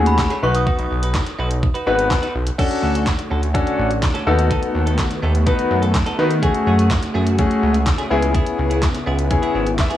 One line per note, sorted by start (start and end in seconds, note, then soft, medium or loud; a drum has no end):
0.00 0.26 D#2 medium
0.00 0.29 A3 medium
0.00 0.29 C#4 medium
0.00 0.29 F#4 medium
0.00 0.29 G#4 medium
0.06 0.44 B5 medium
0.06 muted clean electric guitar stroke medium
0.06 closed hi-hat medium
0.18 muted clean electric guitar stroke soft
0.18 kick loud
0.18 snare medium
0.18 clap loud
0.30 0.50 A3 medium
0.30 0.42 C#4 medium
0.30 0.43 G#4 medium
0.30 closed hi-hat soft
0.42 0.66 B1 medium
0.42 1.19 B3 medium
0.42 1.19 D#4 medium
0.42 0.59 D#4 medium
0.42 1.20 F#4 medium
0.42 0.54 F#4 medium
0.42 1.20 B4 medium
0.42 0.53 B4 medium
0.42 0.55 C#6 loud
0.55 2.07 D#6 medium
0.55 muted clean electric guitar stroke soft
0.55 closed hi-hat medium
0.67 0.86 D#4 medium
0.67 0.78 F#4 medium
0.67 0.78 B4 medium
0.67 kick loud
0.79 0.87 B1 medium
0.79 muted clean electric guitar stroke medium
0.79 closed hi-hat soft
0.91 1.22 B1 medium
0.91 muted clean electric guitar stroke soft
1.03 1.20 D#4 soft
1.03 1.19 F#4 medium
1.03 1.19 B4 medium
1.03 closed hi-hat medium
1.14 kick loud
1.14 snare medium
1.14 clap loud
1.26 muted clean electric guitar stroke soft
1.26 closed hi-hat medium
1.39 1.70 B1 loud
1.39 1.58 D#4 medium
1.39 1.50 F#4 medium
1.39 1.49 B4 loud
1.51 muted clean electric guitar stroke medium
1.51 closed hi-hat medium
1.62 muted clean electric guitar stroke soft
1.62 kick loud
1.74 1.85 D#4 medium
1.74 1.86 F#4 medium
1.74 1.86 B4 medium
1.74 closed hi-hat soft
1.86 2.18 G#1 medium
1.86 2.21 B3 medium
1.86 2.03 D#4 medium
1.86 2.21 D#4 medium
1.86 2.21 F#4 medium
1.86 1.98 F#4 medium
1.86 2.21 B4 loud
1.86 1.97 B4 medium
1.98 muted clean electric guitar stroke soft
1.98 closed hi-hat medium
2.10 muted clean electric guitar stroke soft
2.10 kick loud
2.10 snare medium
2.10 clap loud
2.22 2.33 D#4 medium
2.22 2.34 F#4 medium
2.22 2.34 B4 medium
2.22 closed hi-hat soft
2.34 2.51 B1 medium
2.34 muted clean electric guitar stroke soft
2.47 muted clean electric guitar stroke soft
2.47 closed hi-hat medium
2.58 4.25 D3 medium
2.58 8.07 A3 medium
2.58 3.04 C#4 medium
2.58 2.78 C#4 medium
2.58 3.04 D4 medium
2.58 3.04 F#4 medium
2.58 6.39 F#4 medium
2.58 2.70 F#4 loud
2.58 3.04 A4 medium
2.58 2.69 A4 medium
2.58 4.25 C#5 medium
2.58 kick loud
2.58 closed hi-hat medium
2.58 crash medium
2.71 muted clean electric guitar stroke soft
2.71 closed hi-hat medium
2.82 3.14 D2 medium
2.82 2.94 C#4 medium
2.82 2.94 F#4 medium
2.82 2.93 A4 medium
2.94 3.11 C#4 medium
2.94 3.11 F#4 medium
2.94 3.11 A4 medium
2.94 closed hi-hat medium
3.06 kick loud
3.06 snare medium
3.06 clap loud
3.06 closed hi-hat medium
3.19 muted clean electric guitar stroke soft
3.19 closed hi-hat medium
3.30 3.62 D2 medium
3.30 3.50 C#4 medium
3.30 3.42 F#4 medium
3.30 3.41 A4 medium
3.42 muted clean electric guitar stroke soft
3.42 closed hi-hat medium
3.54 3.89 C#4 medium
3.54 3.89 D4 medium
3.54 3.89 F#4 medium
3.54 3.89 A4 loud
3.54 muted clean electric guitar stroke soft
3.54 kick loud
3.54 closed hi-hat medium
3.67 muted clean electric guitar stroke soft
3.67 closed hi-hat soft
3.79 4.10 A1 medium
3.91 muted clean electric guitar stroke soft
3.91 closed hi-hat soft
4.02 muted clean electric guitar stroke soft
4.02 kick loud
4.02 snare medium
4.02 clap loud
4.02 closed hi-hat medium
4.14 4.26 C#4 medium
4.14 4.27 F#4 medium
4.14 4.26 A4 medium
4.14 closed hi-hat medium
4.26 4.58 D#2 loud
4.26 6.40 D#3 medium
4.26 6.40 B3 medium
4.26 5.03 B3 medium
4.26 4.43 B3 medium
4.26 5.03 D#4 medium
4.26 4.38 D#4 medium
4.26 5.03 F#4 medium
4.26 5.04 A4 medium
4.26 4.37 A4 medium
4.38 muted clean electric guitar stroke soft
4.38 closed hi-hat medium
4.50 4.70 B3 medium
4.50 4.62 D#4 medium
4.50 4.61 A4 medium
4.50 kick loud
4.50 closed hi-hat medium
4.62 muted clean electric guitar stroke soft
4.62 closed hi-hat medium
4.74 5.06 D#2 medium
4.74 muted clean electric guitar stroke soft
4.86 5.03 B3 medium
4.86 5.03 D#4 medium
4.86 5.03 A4 medium
4.86 closed hi-hat medium
4.98 kick loud
4.98 snare medium
4.98 clap loud
4.98 closed hi-hat medium
5.11 muted clean electric guitar stroke soft
5.11 closed hi-hat medium
5.22 5.54 D#2 medium
5.22 5.42 B3 medium
5.22 5.34 D#4 medium
5.22 5.33 A4 medium
5.34 muted clean electric guitar stroke soft
5.34 closed hi-hat medium
5.46 5.66 B3 medium
5.46 5.81 B3 medium
5.46 5.81 D#4 medium
5.46 5.58 D#4 medium
5.46 5.81 F#4 medium
5.46 5.57 A4 medium
5.46 5.81 B4 loud
5.46 kick loud
5.46 closed hi-hat medium
5.58 muted clean electric guitar stroke soft
5.58 closed hi-hat soft
5.70 6.02 F#2 medium
5.70 muted clean electric guitar stroke soft
5.82 5.93 B3 medium
5.82 5.93 D#4 medium
5.82 5.93 A4 medium
5.82 closed hi-hat soft
5.94 muted clean electric guitar stroke soft
5.94 kick loud
5.94 snare medium
5.94 clap loud
5.94 closed hi-hat medium
6.06 6.17 B3 medium
6.06 6.17 D#4 medium
6.06 6.18 A4 medium
6.06 closed hi-hat soft
6.18 6.50 D#3 loud
6.18 6.30 B3 medium
6.18 6.30 D#4 medium
6.18 6.30 F#4 medium
6.18 6.30 B4 medium
6.30 muted clean electric guitar stroke medium
6.30 closed hi-hat medium
6.42 8.09 C#3 medium
6.42 6.62 A3 medium
6.42 6.88 A3 medium
6.42 6.88 C#4 medium
6.42 6.54 C#4 medium
6.42 8.09 F#4 medium
6.42 6.88 F#4 medium
6.42 9.97 G#4 medium
6.42 6.88 G#4 medium
6.42 6.53 G#4 medium
6.42 kick loud
6.42 closed hi-hat medium
6.54 muted clean electric guitar stroke soft
6.54 closed hi-hat medium
6.66 6.98 F#2 medium
6.66 6.78 A3 medium
6.66 6.78 C#4 medium
6.66 6.77 G#4 medium
6.78 6.95 A3 medium
6.78 6.95 C#4 medium
6.78 6.95 G#4 medium
6.78 closed hi-hat medium
6.90 kick loud
6.90 snare medium
6.90 clap loud
6.90 closed hi-hat medium
7.02 muted clean electric guitar stroke soft
7.02 closed hi-hat medium
7.14 7.46 F#2 medium
7.14 7.34 A3 loud
7.14 7.26 C#4 medium
7.14 7.25 G#4 loud
7.27 muted clean electric guitar stroke soft
7.27 closed hi-hat medium
7.38 7.73 A3 medium
7.38 7.73 C#4 medium
7.38 7.73 F#4 medium
7.38 7.73 G#4 loud
7.38 muted clean electric guitar stroke soft
7.38 kick loud
7.38 closed hi-hat medium
7.51 muted clean electric guitar stroke soft
7.51 closed hi-hat soft
7.63 7.94 C#2 medium
7.74 muted clean electric guitar stroke soft
7.74 closed hi-hat soft
7.86 muted clean electric guitar stroke soft
7.86 kick loud
7.86 snare medium
7.86 clap loud
7.86 closed hi-hat medium
7.98 8.10 A3 medium
7.98 8.11 C#4 medium
7.98 8.10 G#4 medium
7.98 closed hi-hat soft
8.10 8.42 C#2 loud
8.10 9.97 C#3 medium
8.10 8.27 B3 medium
8.10 8.87 B3 medium
8.10 9.97 B3 medium
8.10 8.87 C#4 medium
8.10 9.97 E4 medium
8.10 8.88 E4 medium
8.10 8.22 E4 medium
8.10 8.88 G#4 loud
8.10 8.21 G#4 medium
8.23 muted clean electric guitar stroke soft
8.23 closed hi-hat medium
8.34 8.54 B3 medium
8.34 8.46 E4 medium
8.34 8.45 G#4 medium
8.34 kick loud
8.34 closed hi-hat medium
8.46 muted clean electric guitar stroke soft
8.46 closed hi-hat medium
8.58 8.90 C#2 medium
8.58 muted clean electric guitar stroke soft
8.70 8.87 B3 soft
8.70 8.87 E4 medium
8.70 8.87 G#4 medium
8.70 closed hi-hat medium
8.82 kick loud
8.82 snare medium
8.82 clap loud
8.82 closed hi-hat medium
8.94 muted clean electric guitar stroke soft
8.94 closed hi-hat medium
9.06 9.38 C#2 medium
9.06 9.26 B3 medium
9.06 9.18 E4 medium
9.06 9.17 G#4 medium
9.18 muted clean electric guitar stroke soft
9.18 closed hi-hat medium
9.30 9.65 B3 medium
9.30 9.65 C#4 medium
9.30 9.65 E4 medium
9.30 9.65 G#4 medium
9.30 kick loud
9.30 closed hi-hat medium
9.42 9.53 B3 medium
9.42 9.53 E4 medium
9.42 9.54 G#4 medium
9.42 closed hi-hat soft
9.54 9.86 G#1 medium
9.54 9.71 B3 medium
9.54 9.66 E4 medium
9.54 9.65 G#4 medium
9.66 muted clean electric guitar stroke soft
9.66 closed hi-hat soft
9.78 9.97 E5 medium
9.78 muted clean electric guitar stroke soft
9.78 kick loud
9.78 snare medium
9.78 clap loud
9.78 closed hi-hat medium
9.90 9.97 B3 medium
9.90 9.97 E4 medium
9.90 9.97 G#4 medium
9.90 closed hi-hat medium